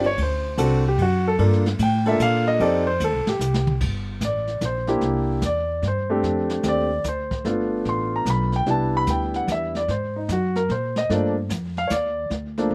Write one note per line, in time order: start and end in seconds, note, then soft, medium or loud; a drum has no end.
0.00 0.16 G1 medium
0.00 ride soft
0.06 0.18 C#5 medium
0.18 0.57 D2 medium
0.18 kick soft
0.18 ride medium
0.22 0.83 C5 medium
0.57 0.97 C2 medium
0.57 0.81 C4 medium
0.57 0.82 D4 medium
0.57 0.82 F#4 medium
0.57 0.82 A4 medium
0.57 kick soft
0.57 hi-hat pedal medium
0.57 ride medium
0.88 1.00 G4 medium
0.98 1.37 F#2 medium
0.98 kick soft
0.98 ride medium
1.02 1.26 F#4 medium
1.28 1.35 A4 medium
1.38 1.78 G2 medium
1.38 1.62 A#3 medium
1.38 1.62 D4 medium
1.38 1.63 F4 medium
1.38 1.63 A4 medium
1.38 kick soft
1.38 ride medium
1.53 snare soft
1.66 snare soft
1.79 2.18 A2 loud
1.79 2.06 G5 medium
1.79 kick soft
1.79 hi-hat pedal medium
1.79 ride medium
2.06 2.57 A#3 medium
2.06 2.57 D4 medium
2.06 2.57 F4 medium
2.06 2.57 A4 medium
2.06 2.20 E5 medium
2.06 ride medium
2.19 2.58 A#2 loud
2.19 2.46 F5 loud
2.19 kick soft
2.19 hi-hat pedal medium
2.19 ride medium
2.48 2.60 D#5 loud
2.59 2.99 F2 medium
2.59 2.84 C4 medium
2.59 2.84 D#4 medium
2.59 2.84 G4 medium
2.59 2.84 A4 medium
2.59 2.86 D5 medium
2.59 kick soft
2.59 ride medium
2.87 3.00 C5 medium
3.00 3.13 D#2 loud
3.00 kick soft
3.00 hi-hat pedal medium
3.00 ride medium
3.04 3.28 A4 medium
3.13 3.26 C2 medium
3.26 3.39 A1 medium
3.26 3.72 G4 medium
3.26 snare medium
3.39 3.79 C2 medium
3.39 snare medium
3.39 hi-hat pedal medium
3.54 snare medium
3.67 mid tom medium
3.81 4.20 G1 medium
3.81 brush sweep soft
3.81 kick medium
3.81 snare soft
3.81 crash medium
4.21 4.60 A1 medium
4.21 4.61 D5 medium
4.21 kick soft
4.21 snare medium
4.21 hi-hat pedal medium
4.47 snare soft
4.61 5.00 A#1 medium
4.61 kick soft
4.61 snare medium
4.61 hi-hat pedal medium
4.65 5.01 C5 medium
4.87 5.39 A#3 medium
4.87 5.40 D4 medium
4.87 5.40 E4 medium
4.87 5.40 G4 medium
4.87 snare soft
5.01 5.41 C2 medium
5.01 brush sweep soft
5.01 kick soft
5.01 snare soft
5.42 5.81 E2 medium
5.42 kick soft
5.42 snare medium
5.42 hi-hat pedal soft
5.46 5.82 D5 medium
5.82 6.22 G2 medium
5.82 kick soft
5.82 snare soft
5.88 6.23 C5 medium
6.10 6.61 A3 medium
6.10 6.62 C4 medium
6.10 6.61 D4 medium
6.10 6.62 G4 medium
6.23 6.62 F2 medium
6.23 brush sweep soft
6.23 kick soft
6.23 snare soft
6.50 snare medium
6.63 7.03 D#2 medium
6.63 6.88 A3 medium
6.63 6.88 C4 medium
6.63 6.88 D4 soft
6.63 6.88 G4 medium
6.63 kick soft
6.63 snare medium
6.63 hi-hat pedal medium
6.68 7.04 D5 medium
7.04 7.44 D2 medium
7.04 kick soft
7.04 snare medium
7.04 hi-hat pedal medium
7.08 7.44 C5 medium
7.31 kick medium
7.31 snare soft
7.45 7.84 G1 medium
7.45 8.58 A3 medium
7.45 8.58 B3 medium
7.45 8.59 D4 medium
7.45 8.59 F4 medium
7.45 brush sweep soft
7.45 kick soft
7.45 snare soft
7.85 8.25 A1 medium
7.85 8.13 C6 medium
7.85 kick soft
7.85 snare soft
8.16 8.28 A#5 medium
8.25 8.65 B1 medium
8.25 kick soft
8.25 snare medium
8.25 hi-hat pedal soft
8.30 8.54 B5 medium
8.52 8.68 G5 medium
8.52 snare soft
8.66 9.06 C2 medium
8.66 9.80 G3 medium
8.66 9.80 B3 medium
8.66 9.80 D4 medium
8.66 9.80 E4 medium
8.66 brush sweep soft
8.66 kick soft
8.66 snare soft
8.70 8.94 A5 medium
8.97 9.09 B5 loud
9.07 9.46 D2 medium
9.07 9.34 G5 medium
9.07 kick soft
9.07 snare medium
9.07 hi-hat pedal medium
9.34 9.48 F#5 medium
9.34 snare soft
9.47 9.87 E2 medium
9.47 kick soft
9.47 snare medium
9.47 hi-hat pedal medium
9.52 9.76 E5 medium
9.75 9.89 D5 medium
9.75 snare soft
9.88 10.27 G#2 medium
9.88 10.15 C5 medium
9.88 brush sweep soft
9.88 kick soft
9.88 snare soft
10.16 10.29 D#4 medium
10.28 10.68 F#2 medium
10.28 10.56 F#4 medium
10.28 kick soft
10.28 snare medium
10.28 hi-hat pedal medium
10.56 10.69 A#4 medium
10.56 snare soft
10.69 11.08 A#2 medium
10.69 10.96 C5 medium
10.69 kick soft
10.69 snare soft
10.96 11.10 D#5 medium
10.96 snare medium
11.09 11.49 G2 medium
11.09 11.33 F3 medium
11.09 11.34 A3 medium
11.09 11.34 A#3 medium
11.09 11.34 D4 medium
11.09 11.27 D5 medium
11.09 brush sweep soft
11.09 kick soft
11.09 snare soft
11.49 11.89 F2 medium
11.49 kick soft
11.49 snare medium
11.49 hi-hat pedal medium
11.77 11.91 F5 medium
11.77 snare soft
11.87 12.30 D#2 medium
11.87 11.91 C#5 medium
11.87 kick soft
11.87 snare medium
11.87 hi-hat pedal medium
11.92 12.29 D5 medium
12.30 12.70 D2 medium
12.30 brush sweep soft
12.30 kick soft
12.30 snare soft
12.58 12.75 F3 medium
12.58 12.75 A3 medium
12.58 12.75 A#3 medium
12.58 12.75 D4 medium
12.58 snare soft
12.71 12.75 A#1 medium